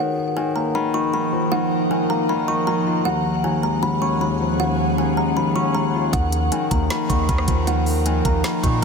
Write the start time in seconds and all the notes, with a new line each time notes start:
Already playing: D#3 A#4 F#5
0.00 F3 D#4 F#5
0.37 D#3 G#5
0.56 A#3 A#5
0.75 D#3 B5
0.94 D#4 C#6
1.14 D#3 B5
1.33 F3
1.52 D#3 F#5
1.91 D#3 G#5
2.10 A#3 A#5
2.29 D#3 B5
2.48 D#4 C#6
2.67 D#3 A#5
2.87 F4
3.05 D#2 F3 C#4 G#4 F#5
3.44 D#2 G#5
3.63 G#3 A#5
3.83 D#2 B5
4.02 C#4 C#6
4.21 D#2 B5
4.40 F3
4.60 D#2 F#5
4.98 D#2 G#5
5.17 G#3 A#5
5.37 D#2 B5
5.56 C#4 C#6
5.75 D#2 A#5
5.95 F4
6.13 D#2 D#3 F3 D#4 A#4 F#5, kick, closed hi-hat
6.32 closed hi-hat
6.52 D#3 G#5, closed hi-hat
6.71 D#2 A#3 A#5, kick, closed hi-hat
6.90 D#3 B5, cross-stick, snare, closed hi-hat
7.09 D#2 D#4 C#6, kick, closed hi-hat
7.29 D#2 D#3 B5, kick, closed hi-hat
7.38 cross-stick
7.48 D#2 F3, kick, closed hi-hat
7.67 D#3 F#5, closed hi-hat
7.86 open hi-hat
8.06 D#3 G#5, closed hi-hat
8.25 D#2 A#3 A#5, kick, closed hi-hat
8.44 D#3 B5, cross-stick, snare, closed hi-hat
8.63 A#2 D#4 C#6, kick, closed hi-hat